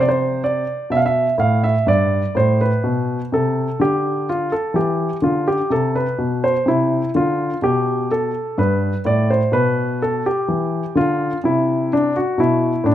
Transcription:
grand piano
Already playing: C3
0.01 D5
0.09 C5
0.44 D5
0.90 B2 E5
0.97 F5
1.06 E5
1.38 A2 F5
1.64 E5
1.87 G2 D5
2.35 A2 C5
2.61 B4
2.84 B2
3.32 C3 A4
3.80 D3 G4
4.29 F4
4.52 A4
4.74 E3 G4
5.22 D3 F4
5.48 G4
5.70 C3 A4
5.95 B4
6.19 B2
6.44 C5
6.66 C3 E4
7.15 D3 F4
7.62 B2 G4
8.11 A4
8.58 G2 B4
9.05 A2 D5
9.30 C5
9.52 B2 B4
10.02 A4
10.26 G4
10.48 E3
10.95 D3 F4
11.44 C3 E4
11.93 D4
12.16 F#4
12.38 B2 E4
12.84 A2 D4

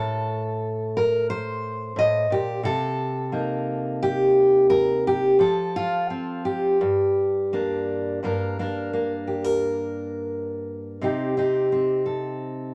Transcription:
steel-string acoustic guitar
Already playing: A2 A4
0.97 A#4
1.30 C5
1.96 A2 D#5
2.30 A#2 G4
2.63 C3 A4
3.32 A#3 D#4
4.03 G4
4.70 A#4
5.07 G4
5.39 F3 A4
5.76 F4
6.10 C4
6.45 G4
6.81 G2
7.53 A#3 D4
8.23 G2 A#3 D4 A#4
8.59 A#3 D4 A#4
8.93 A#3
9.27 G4
9.44 A#4
11.01 C3 C4 D#4 G4
11.37 C4 D#4 G4
11.72 C4
12.06 A4

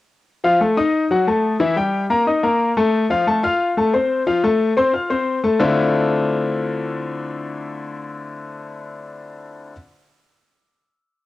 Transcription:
grand piano
0.44 F3 F4 F5
0.61 A3 A4 A5
0.77 D#4 D#5 D#6
1.11 F#3 F#4 F#5
1.27 A3 A4 A5
1.60 E3 E4 E5
1.76 G3 G4 G5
2.10 A#3 A#4 A#5
2.27 D#4 D#5 D#6
2.43 A#3 A#4 A#5
2.77 A3 A4 A5
3.10 F3 F4 F5
3.27 A3 A4 A5
3.43 F4 F5 F6
3.77 A3 A4 A5
3.93 C4 C5 C6
4.26 F3 F4 F5
4.43 A3 A4 A5
4.77 C4 C5 C6
4.93 F4 F5 F6
5.10 C4 C5 C6
5.44 A3 A4 A5
5.59 D3 A3 C4 D4 E4 F4

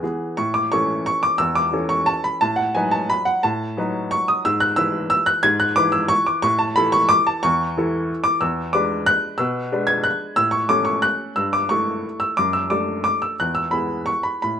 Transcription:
upright piano
0.03 E3 B3 G#4
0.37 A2 C#6
0.54 D6
0.72 E3 C#4 A4 C#6
1.06 C#6
1.23 D6
1.38 E2 E6
1.55 D6
1.73 E3 C#4 A4
1.89 C#6
2.06 A5
2.24 B5
2.41 A2 A5
2.56 F#5
2.75 F#3 D#4 B4 G#5
2.91 A5
3.10 B5
3.25 F#5
3.43 A2 A5
3.77 F#3 D#4 B4
4.11 C#6
4.28 D#6
4.45 G#2 E6
4.60 F#6
4.76 E3 E4 B4 E6
5.10 E6
5.26 F#6
5.43 G#2 G#6
5.60 F#6
5.76 E3 E4 B4 D6
5.92 E6
6.08 C#6
6.27 D6
6.42 A2 C#6
6.59 A5
6.76 E3 E4 A4 B5
6.92 C#6
7.09 D6
7.27 A5
7.43 E2 C#6
7.77 E3 E4 A4
8.24 D6
8.41 E2 E6
8.73 G#3 D4 B4 D6
9.06 F#6
9.38 B2 E6
9.72 G#3 D4 B4
9.87 G#6
10.04 F#6
10.36 A2 E6
10.51 C#6
10.69 A3 C#4 A4 D6
10.85 C#6
11.02 F#6
11.36 G2 E6
11.53 D6
11.69 A3 E4 A4 C#6
12.20 E6
12.37 F#2 D6
12.53 E6
12.70 A3 D4 A4 D6
13.04 D6
13.22 E6
13.40 E2 F#6
13.55 E6
13.71 B3 E4 G#4 B5
14.06 C#6
14.23 B5
14.42 A2 B5

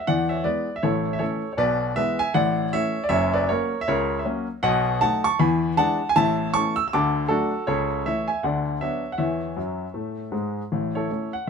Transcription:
grand piano
0.07 E2 E3 D5 F#5
0.29 C#5 E5
0.44 E3 G#3 B3 B4 D5
0.76 E5
0.83 A1 A2 A4 C#5
1.13 E5
1.19 E3 A3 C#4 A4 C#5
1.53 C#5
1.57 B1 B2 B4 D5
1.96 E3 G#3 B3 B4 E5
2.19 E5 G#5
2.34 A1 A2 D5 F#5
2.73 E3 A3 C#4 C#5 E5
3.04 D5
3.09 F#1 F#2 C#5 E5
3.33 B4 D5
3.49 F#3 A#3 C#4 A#4 C#5
3.81 E5
3.88 C#2 C#3 A#4 C#5
4.19 E5
4.25 F#3 A#3 C#4
4.63 B1 B2 D#5 F#5
5.01 F#3 A3 D#4 F#5 A5
5.24 A5 C#6
5.39 E2 E3 G#5 B5
5.77 E3 G#3 D4 F#5 A5
6.09 G#5
6.16 A1 A2 E5 A5
6.54 E3 A3 C#4 A5 C#6
6.76 E6
6.88 E6
6.93 D2 D3 A5 D6
7.28 F#3 A3 D4 F#4 A4
7.67 C#2 C#3 A4 C#5
8.06 E3 A3 E4 C#5 E5
8.28 E5 G#5
8.43 D2 D3 D5 F#5
8.81 F#3 B3 D4 C#5 E5
9.12 F#5
9.18 E2 E3 C#5 E5
9.56 F#2 F#3
9.94 A2 A3
10.32 G#2 G#3
10.72 A1 A2
10.95 E4 A4 C#5
11.11 A3 C#4 E4
11.33 F#5

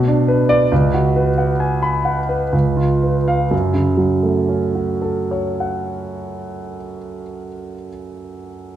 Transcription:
grand piano
Already playing: B2
0.08 D4
0.28 B4
0.49 D5
0.72 C#2
0.94 F#4
1.16 B4
1.38 F#5
1.60 G#5
1.82 B5
2.05 F#5
2.29 B4
2.52 C#2
2.77 F4
3.03 B4
3.28 F5
3.51 F#2
3.74 C#3
3.97 F#3
4.23 A3
4.49 C#4
4.75 F#4
5.02 A4
5.31 C#5
5.60 F#5

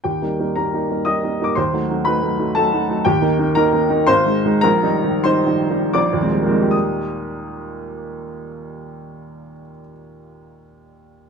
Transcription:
grand piano
0.04 D#2 G4 G5
0.22 G3 A#3 D#4
0.39 G3 A#3 D#4
0.56 G3 A#3 D#4 A#4 A#5
0.73 G3 A#3 D#4
0.90 G3 A#3 D#4
1.05 G3 A#3 D#4 D#5 D#6
1.23 G3 A#3 D#4
1.40 G3 A#3 D#4 D6
1.55 D#2 C5 C6
1.73 F#3 A3 D#4
1.90 F#3 A3 D#4
2.05 F#3 A3 D#4 B4 B5
2.22 F#3 A3 D#4
2.39 F#3 A3 D#4
2.55 F#3 A3 D#4 A4 A5
2.73 F#3 A3 D#4
2.89 F#3 A3 D#4
3.05 D#2 G4 G5
3.21 D#3 A#3 D#4
3.39 D#3 A#3 D#4
3.55 D#3 A#3 D#4 A#4 A#5
3.73 D#3 A#3 D#4
3.89 D#3 A#3 D#4
4.07 G#1 C5 C6
4.26 D#3 G#3 D#4
4.45 D#3 G#3 D#4
4.61 A#1 A#4 A#5
4.83 D#3 G3 D#4
5.03 D#3 G3 D#4
5.24 D#3 G3 D#4 C5 C6
5.46 D#3 G3 D#4
5.70 D#3 G3 D#4
5.93 A#1 D5 D6
6.13 D#2
6.21 A#2 F3 G#3 C4
6.33 G3
6.42 F3 A#3
6.46 G#3 C4
6.52 D#4
6.62 G4
6.71 D#6

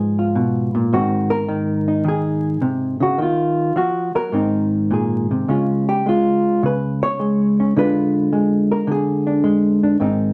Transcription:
hollow-body jazz guitar
Already playing: G#2 F3 B3 F4 G#4
0.19 F4
0.35 B2
0.75 A#2
0.93 G#2 D#3 C4 F#4
1.30 A#4
1.48 D#3
1.88 D#4
2.04 D#3 G#4
2.62 C3
3.00 C#3 F#4
3.18 D#3 F4
3.76 F3 F#4
4.15 F#3 A#4
4.32 G#2 D#3 C4 D#4
4.91 A#2 G#4
5.31 C3
5.48 C#3 G#3 C#4 F4
5.89 G4
6.06 G#3 F4
6.63 C#3 B4
7.03 C#5
7.19 G#3
7.60 C#4
7.76 D3 G#3 D4 F4 B4
8.33 G#3
8.72 A#4
8.87 D3
8.92 G#4
9.27 D4
9.44 G#3
9.83 D4
10.00 G#2 D#3 C4 D#4

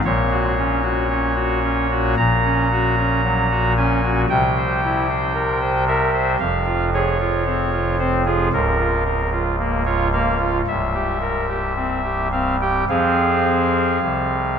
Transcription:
pipe organ
0.04 A#1 A#2 C#5
0.31 F#4
0.58 C#4
0.83 F#4
1.10 C#4
1.35 F#4
1.62 C#4
1.91 F#4
2.17 A#1 A#2 A#5
2.44 C#4
2.72 F#4
2.97 C#4
3.24 F#3
3.50 F#4
3.77 C#4 G#5
4.03 F#4
4.29 C2 C3 G5
4.57 C5
4.83 E4
5.09 C5
5.35 A#4
5.61 C5
5.88 A#4 E5
6.14 C5
6.39 F1 F2 F5
6.66 F4
6.94 G#4 C#5
7.20 F4
7.45 C4
7.72 F4
7.99 C4 C5
8.26 F4 G#4
8.53 C#1 C#2 A#4
8.80 F4
9.06 A#4
9.32 F4
9.59 A#3
9.85 F4 C#5
10.13 A#3 F5
10.39 F4
10.67 C1 C2 E5
10.94 G4
11.21 A#4
11.48 G4
11.76 C4
12.04 G4
12.32 C4 F5
12.61 G4 G5
12.89 F2 F3 C4 G#4 F5
14.02 C2 C3

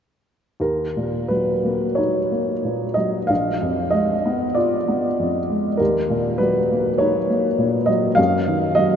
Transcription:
upright piano
0.60 D#2 A#4
0.97 A#2
1.28 F#3 B4
1.64 A#3
1.95 D#4 C#5
2.32 A#3
2.65 A#2
2.94 F#3 D#5
3.27 A#1 F5
3.62 F2
3.90 G#3 D#5
4.26 B3
4.55 F4 D5
4.88 B3
5.19 F2
5.50 G#3
5.77 D#2 A#4
6.10 A#2
6.38 F#3 B4
6.71 A#3
6.98 D#4 C#5
7.30 A#3
7.58 A#2
7.86 F#3 D#5
8.15 F#2 F5
8.47 D#3
8.75 F#3 D#5

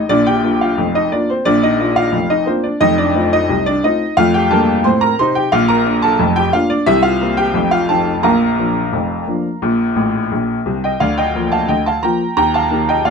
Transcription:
upright piano
0.09 A#1 A#2 D4 D5
0.27 G4 G5
0.44 A#3 D4 F4
0.61 F4 F5
0.78 F1 F2
0.95 D#4 D#5
1.12 A#3 D4 F4 D5
1.30 C4 C5
1.45 A#1 A#2 D4 D5
1.63 D#4 D#5
1.80 A#3 D4 F4
1.96 F4 F5
2.12 F1 F2
2.30 D#4 D#5
2.46 A#3 C4 D4 F4 C5
2.64 D4 D5
2.81 F1 F2 D#4 D#5
2.98 D4 D5
3.14 A3 C4 F4
3.33 D#4 D#5
3.49 C2 C3
3.66 D4 D5
3.84 A3 C4 D#4 F4 D#5
4.17 F2 A3 F4 F5
4.34 G4 G5
4.51 G2 A#3 A4 A5
4.84 A2 C4 C5 C6
5.01 A#4 A#5
5.19 C3 D#4 C5 C6
5.35 G4 G5
5.52 A#1 A#2 F4 F5
5.68 A#4 A#5
5.85 A#3 D4
6.02 A4 A5
6.19 F1 F2
6.36 G4 G5
6.53 A#3 D4 F4 F5
6.70 D4 D5
6.86 C2 C3 E4 E5
7.03 F4 F5
7.21 G3 A#3 C4
7.37 G4 G5
7.54 F1 F2
7.71 F4 F5
7.89 F3 C4 D#4 A4 A5
8.23 A#1 A#2 A#4 F5 A#5
8.58 F3 A#3 D4
8.93 F1 F2
9.27 F3 A#3 D4
9.62 A#1 A#2
9.96 A1 A2
10.32 A#1 A#2
10.66 C2 C3
10.84 D#5 G5
11.00 D2 D5 F5
11.18 D#5 G5
11.35 F3 A#3 F4
11.52 F5 A5
11.69 D2 D#5 G5
11.86 F5 A5
12.03 F3 A#3 F4 G5 A#5
12.37 D#2 G5 A#5
12.54 F5 A5
12.71 D#3 A#3 G4
12.89 D#5 G5
13.05 A#2 D5 F5

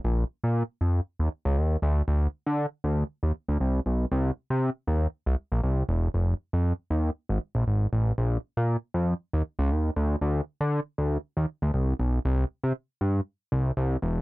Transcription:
analog synth bass
0.05 A#1
0.44 A#2
0.81 F2
1.19 D#2
1.45 C#2
1.57 D#2
1.82 D2
2.08 D2
2.46 D3
2.84 D2
3.23 D#2
3.48 D2
3.60 C2
3.86 B1
4.12 C2
4.50 C3
4.87 D#2
5.26 C2
5.52 A#1
5.64 C2
5.89 E1
6.14 F1
6.53 F2
6.90 D#2
7.29 G#1
7.55 A#1
7.67 G#1
7.93 A1
8.18 A#1
8.57 A#2
8.94 F2
9.33 D#2
9.59 C#2
9.71 D#2
9.96 D2
10.21 D2
10.61 D3
10.98 D2
11.37 D#2
11.62 D2
11.74 C2
12.00 B1
12.25 C2
12.64 C3
13.01 G2
13.52 C2
13.77 C2
14.02 E1

